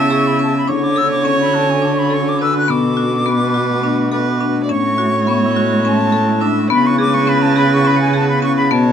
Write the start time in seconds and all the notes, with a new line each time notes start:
Already playing: C#3 B3 E4 E5
0.00 A5
0.10 G#4 C#6
0.27 B5
0.39 C#4 A5
0.57 B5
0.68 D3 C#4 D4 F#4 C#5 C#6
0.83 D6
0.96 A4 E6
1.11 D6
1.24 C#4 C#6
1.41 B5
1.46 E6
1.54 F#4 A5
1.70 G#5
1.82 D4 A5
1.96 B5 C#6
2.10 A4 C#6
2.29 D6
2.39 D4 B4 E6
2.57 F#6
2.68 B2 A3 B3 D4 A4 D6
2.97 F#4
3.26 B3 B4
3.54 F#4
3.83 D4
4.12 A4 B4
4.40 D4
4.63 D5
4.69 A2 G#3 C#4 E4 C#5 C#6
4.98 F#4
5.27 B3 C#6
5.46 E6
5.56 F#4
5.66 F#6
5.85 C#4 A5
6.12 A4
6.41 D4 E5
6.69 C#3 B3 B4
6.73 B5
6.86 C#6
6.98 G#4 D6
7.14 C#6
7.27 C#4 B5
7.42 A5
7.56 G#4 B5 F#6
7.73 C#6
7.77 B6
7.85 C#4 B5
7.96 C#7
8.01 G#5
8.14 G#4 A5
8.29 B5
8.42 C#4 C#6
8.56 B5
8.71 B2 D3 A3 B3 C#5 A5